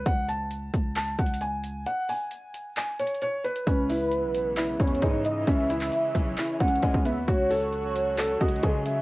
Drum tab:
HH |x-----x-----x-----x-----x-----x-x-x-x-----x-----|x-----o-----x-----x-----x-----x-x-x-x-----x--x--|x-----o-----x-----x-----x-----x-x-x-x-----x-----|x-----x-----x-----x-----x-----x-x-x-x-----x-----|
CP |------------------------x-----------------------|------------------------x-----------------------|------------------------x-----------------------|---------x--------------x-----------------------|
BD |o-----------------o-----------o-----------------|------------------------------------------------|o-----------------------------o-----o-----------|o-----------------o-----------o-----o--o--------|

HH |x-----o-----x-----x-----x-----x-x-x-x-----x-----|
CP |------------------------x-----------------------|
BD |o-----------------------------o-----o-----------|